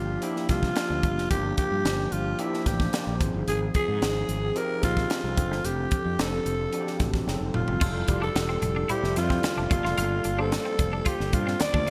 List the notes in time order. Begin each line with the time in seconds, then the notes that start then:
Already playing: G1 F3 A#3 D4 F4 G4
0.21 F3 A#3 D4 E4 G4, closed hi-hat
0.36 snare
0.49 C2 F4, kick, snare, closed hi-hat
0.63 kick, snare
0.76 F3 A#3 D4 F4, snare, closed hi-hat
0.90 D2
1.03 G1, kick, closed hi-hat
1.17 F1, snare
1.30 G1 F3 A#3 D4 G4, kick, closed hi-hat
1.57 G4, kick, closed hi-hat
1.71 G2
1.84 G1 F3 A#3 D4 G4, snare, closed hi-hat
2.12 G1 F4, closed hi-hat
2.39 F3 A#3 D4 E4 G4, closed hi-hat
2.54 snare
2.66 A1 G4, kick, snare, closed hi-hat
2.80 kick, snare
2.93 F3 A#3 D4 G4, snare, closed hi-hat
3.07 A#1
3.20 G#1 F3 B3 D#4 G#4, kick, closed hi-hat
3.26 C4
3.34 G1
3.47 G#1 G#4, closed hi-hat
3.74 G#4, kick, closed hi-hat
3.88 G#2
4.01 G#1 F3 C4 D#4 G#4, snare, closed hi-hat
4.29 G#1, closed hi-hat
4.55 F3 C4 D#4 G4 A#4, closed hi-hat
4.83 A#1 F4, kick, snare, closed hi-hat
4.97 kick, snare
5.09 F3 C4 D#4 G#4, snare, closed hi-hat
5.24 C2
5.37 F1 F3 C4 D4 A4, kick, closed hi-hat
5.51 G1, snare
5.64 F1 G4, closed hi-hat
5.91 kick, closed hi-hat
6.05 F2
6.18 F1 F3 C4 D4 G4 A4, snare, closed hi-hat
6.26 A4
6.45 F1, closed hi-hat
6.73 F3 C4 D4 F#4, closed hi-hat
6.80 G4
6.87 snare
7.00 A1, kick, snare, closed hi-hat
7.14 kick, snare
7.27 F#1 F#3 C4 D#4 G#4, snare
7.34 A4
7.41 F1
7.54 F1 F4, mid tom
7.68 F#1, floor tom
7.81 F1 G3 E4 F4 A4, kick, crash
8.08 F1 G3 E4 F4 G4, muted clean electric guitar stroke, kick, closed hi-hat
8.22 D4 A4
8.35 E1, snare, closed hi-hat, high conga
8.49 C4
8.62 F1, muted clean electric guitar stroke, closed hi-hat, muted conga, low conga
8.76 D4
8.89 G3 E4 F4 G4 C5, closed hi-hat, low conga
9.03 F1 G3 F4 A4 E5, snare
9.16 F2 F4, muted clean electric guitar stroke, snare, closed hi-hat, muted conga
9.30 C4, kick, snare
9.43 snare, closed hi-hat, high conga
9.57 F1 D4, high conga
9.70 G1 G3 A#3 F4 A4, muted clean electric guitar stroke, kick, closed hi-hat, high conga
9.84 F1 F4, snare
9.98 G1 F4, closed hi-hat
10.24 G1, muted clean electric guitar stroke, closed hi-hat
10.38 G3 A#3 D4 F4 A4 C5
10.52 snare, closed hi-hat, high conga
10.65 C4
10.79 F1, muted clean electric guitar stroke, kick, closed hi-hat, muted conga
10.93 D4
11.05 F4 G4, kick, closed hi-hat
11.20 G1, snare
11.33 G2 F4, muted clean electric guitar stroke, kick, closed hi-hat, muted conga, low conga
11.47 C4, snare
11.60 D5, snare, closed hi-hat, high conga
11.73 D2 G3 A#3 D4 F4 A4, kick, high conga